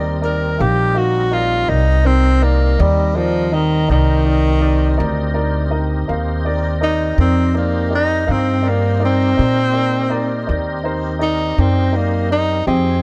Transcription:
0.00 0.57 D#2 medium
0.00 3.85 G3 medium
0.00 3.85 C4 medium
0.00 0.14 D#4 medium
0.00 3.85 D#4 medium
0.00 0.14 A#4 medium
0.00 3.85 A#4 medium
0.00 0.14 D5 medium
0.21 0.50 D#4 medium
0.21 0.50 A#4 medium
0.21 0.63 A#4 medium
0.21 0.50 D5 medium
0.58 1.67 A#1 medium
0.58 0.87 D#4 soft
0.58 0.99 G4 medium
0.58 0.87 A#4 soft
0.58 0.87 F5 soft
0.94 1.23 D#4 soft
0.94 1.35 F#4 medium
0.94 1.23 A#4 soft
0.94 1.23 F5 soft
1.31 1.60 D#4 soft
1.31 1.71 F4 medium
1.31 1.60 A#4 soft
1.31 1.61 D5 soft
1.68 2.76 C2 medium
1.68 1.97 D#4 soft
1.68 2.08 D#4 medium
1.68 1.97 A#4 soft
1.68 1.97 D5 soft
2.04 2.45 C4 medium
2.04 2.32 D#4 soft
2.04 2.33 A#4 soft
2.04 2.33 C5 medium
2.42 2.83 A#3 medium
2.42 2.70 D#4 medium
2.42 2.70 A#4 medium
2.42 2.70 D5 medium
2.79 3.86 D#2 medium
2.79 3.18 G3 medium
2.79 3.07 D#4 soft
2.79 3.07 A#4 soft
2.79 3.07 D5 medium
3.15 3.55 F3 medium
3.15 3.43 D#4 medium
3.15 3.43 A#4 soft
3.15 3.43 D5 medium
3.52 3.89 D#3 medium
3.52 3.80 D#4 soft
3.52 3.80 A#4 soft
3.52 3.80 D#5 medium
3.88 4.96 C2 medium
3.88 5.33 D#3 loud
3.88 8.25 C4 medium
3.88 4.16 D#4 medium
3.88 8.25 D#4 medium
3.88 8.25 G4 medium
3.88 4.17 A#4 medium
3.88 8.25 A#4 medium
3.88 4.17 D5 medium
4.24 4.53 D#4 medium
4.24 4.53 A#4 medium
4.24 4.53 D5 medium
4.60 4.89 D#4 medium
4.60 4.89 A#4 medium
4.60 4.90 D5 medium
4.98 6.06 D2 medium
4.98 5.26 D#4 medium
4.98 5.26 A#4 medium
4.98 5.26 D5 medium
5.34 5.62 D#4 medium
5.34 5.62 A#4 medium
5.34 5.63 D5 medium
5.70 5.99 D#4 medium
5.70 5.99 A#4 medium
5.70 5.99 D#5 medium
6.08 7.16 D#2 medium
6.08 6.36 D#4 medium
6.08 6.36 A#4 soft
6.08 6.36 F5 medium
6.45 6.73 D#4 medium
6.45 6.73 A#4 medium
6.45 6.73 D5 medium
6.81 7.09 D#4 medium
6.81 7.18 D#4 medium
6.81 7.09 A#4 medium
6.81 7.09 D5 medium
7.18 8.25 F2 medium
7.18 7.55 C4 medium
7.18 7.46 D#4 soft
7.18 7.46 A#4 soft
7.18 7.47 D5 medium
7.54 7.92 A#3 medium
7.54 7.82 D#4 soft
7.54 7.82 A#4 soft
7.54 7.83 D5 medium
7.90 8.19 D#4 soft
7.90 8.19 A#4 soft
7.90 8.19 D5 medium
7.95 8.33 D#4 medium
8.27 9.35 G2 medium
8.27 12.64 C4 medium
8.27 8.55 D#4 medium
8.27 12.64 D#4 medium
8.27 12.64 G4 medium
8.27 8.55 A#4 medium
8.27 12.64 A#4 medium
8.27 8.55 F5 medium
8.31 8.70 C4 medium
8.62 8.91 D#4 soft
8.62 8.91 A#4 soft
8.62 8.92 D5 medium
8.69 9.03 A#3 medium
9.00 9.28 D#4 medium
9.00 9.28 A#4 medium
9.00 9.28 D5 medium
9.05 10.46 C4 medium
9.37 10.45 A#2 medium
9.37 9.65 D#4 soft
9.37 9.65 A#4 soft
9.37 9.65 D5 medium
9.73 10.01 D#4 soft
9.73 10.02 A#4 soft
9.73 10.02 D5 medium
10.09 10.38 D#4 medium
10.09 10.38 A#4 soft
10.09 10.39 D5 medium
10.47 11.55 D#2 medium
10.47 10.75 D#4 medium
10.47 10.75 A#4 soft
10.47 10.76 D5 medium
10.84 11.12 D#4 medium
10.84 11.12 A#4 soft
10.84 11.12 C5 medium
11.19 11.48 D#4 medium
11.19 11.61 D#4 medium
11.19 11.48 A#4 medium
11.19 11.48 D5 medium
11.57 12.64 F#2 medium
11.57 11.98 C4 medium
11.57 11.85 D#4 medium
11.57 11.85 A#4 soft
11.57 11.85 D5 medium
11.93 12.31 A#3 medium
11.93 12.21 D#4 soft
11.93 12.21 A#4 soft
11.93 12.21 D5 soft
12.30 12.58 D#4 soft
12.30 12.67 D#4 medium
12.30 12.58 A#4 soft
12.30 12.59 D5 soft
12.66 13.02 F2 medium
12.66 13.02 F3 medium
12.66 13.02 C4 medium
12.66 13.02 D#4 medium
12.66 12.95 G4 medium
12.66 13.02 G#4 medium
12.66 12.95 G#4 medium
12.66 12.95 D#5 medium

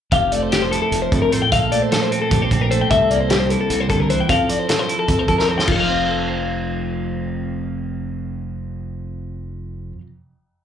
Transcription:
0.12 0.76 F1 medium
0.12 0.92 F2 medium
0.12 1.50 G4 medium
0.12 0.32 F5 medium
0.12 kick medium
0.12 closed hi-hat medium
0.32 1.55 A3 soft
0.32 0.43 D5 medium
0.32 closed hi-hat medium
0.43 0.52 C5 medium
0.52 1.50 F3 medium
0.52 0.62 G4 medium
0.52 snare loud
0.52 closed hi-hat medium
0.62 0.72 C5 medium
0.71 1.50 E4 medium
0.71 0.81 A4 medium
0.71 closed hi-hat medium
0.82 1.02 A4 medium
0.92 1.08 F1 medium
0.92 1.12 F2 medium
0.92 closed hi-hat medium
1.02 1.12 C5 medium
1.12 1.44 F2 medium
1.12 1.32 G2 medium
1.12 1.21 A4 medium
1.12 kick medium
1.12 closed hi-hat soft
1.22 1.32 A#4 medium
1.32 1.52 A2 medium
1.32 1.42 C5 medium
1.32 closed hi-hat medium
1.42 1.52 G5 medium
1.52 1.68 A#1 medium
1.52 2.90 A#2 medium
1.52 2.30 A4 medium
1.52 1.72 F5 medium
1.52 kick medium
1.52 closed hi-hat medium
1.72 2.70 A3 soft
1.72 1.82 D5 medium
1.72 closed hi-hat soft
1.82 1.92 C5 medium
1.91 2.88 F3 medium
1.91 2.02 A4 medium
1.91 snare medium
1.91 closed hi-hat medium
2.02 2.12 C5 medium
2.11 2.51 C4 medium
2.11 2.20 A4 medium
2.11 closed hi-hat soft
2.22 2.42 A4 medium
2.31 2.47 A#1 medium
2.31 2.88 G4 medium
2.31 kick loud
2.31 closed hi-hat medium
2.42 2.52 C5 medium
2.51 2.83 A#1 medium
2.51 3.50 C4 medium
2.51 2.61 A4 medium
2.51 kick medium
2.51 closed hi-hat medium
2.61 2.71 A#4 medium
2.71 3.11 A3 medium
2.71 2.81 C5 medium
2.71 closed hi-hat soft
2.82 2.90 G5 medium
2.90 3.55 C2 loud
2.90 3.69 C3 medium
2.90 4.32 A4 medium
2.90 3.10 E5 medium
2.90 kick medium
2.90 closed hi-hat medium
3.10 4.27 A#3 medium
3.10 3.21 D5 medium
3.10 closed hi-hat soft
3.21 3.30 C5 medium
3.30 4.09 G3 medium
3.30 3.40 G4 medium
3.30 snare loud
3.30 closed hi-hat medium
3.40 3.51 C5 medium
3.50 4.31 E4 soft
3.50 3.59 A4 medium
3.50 closed hi-hat medium
3.61 3.80 A4 medium
3.70 3.86 C2 medium
3.70 3.89 C3 medium
3.70 closed hi-hat medium
3.80 3.89 C5 medium
3.90 4.22 C2 medium
3.90 4.09 D3 medium
3.90 4.00 A4 medium
3.90 kick medium
3.90 closed hi-hat medium
4.00 4.10 A#4 medium
4.09 4.29 E3 medium
4.09 4.20 C5 medium
4.09 closed hi-hat medium
4.21 4.29 G5 medium
4.29 4.45 F2 medium
4.29 5.67 F2 medium
4.29 4.67 F3 medium
4.29 4.48 C4 medium
4.29 4.87 E4 soft
4.29 5.07 A4 medium
4.29 4.50 F5 medium
4.29 kick medium
4.29 closed hi-hat medium
4.49 5.48 C4 soft
4.49 4.59 D5 medium
4.49 closed hi-hat medium
4.59 4.69 C5 medium
4.68 5.65 F3 medium
4.68 4.79 A4 medium
4.68 snare medium
4.68 closed hi-hat medium
4.79 4.90 C5 medium
4.89 5.27 E4 medium
4.89 4.98 A4 medium
4.89 closed hi-hat medium
4.99 5.19 A4 medium
5.08 5.25 F2 medium
5.08 5.65 A4 medium
5.08 kick medium
5.08 closed hi-hat medium
5.19 5.28 C5 medium
5.28 5.60 F2 medium
5.28 5.66 E4 medium
5.28 5.38 A4 medium
5.28 kick medium
5.28 closed hi-hat soft
5.38 5.48 A#4 medium
5.38 snare soft
5.48 5.66 C4 soft
5.48 5.57 C5 medium
5.58 5.68 G5 medium
5.58 snare medium
5.67 9.92 F1 medium
5.67 9.96 F2 medium
5.67 9.92 F4 soft
5.67 kick medium
5.67 crash medium
5.72 5.76 A4 medium
5.72 10.00 C5 soft
5.78 10.01 F3 medium
5.78 9.98 F5 medium
5.88 10.07 C4 medium
6.08 6.33 A4 soft
6.28 9.97 C5 medium
6.34 10.00 F5 medium

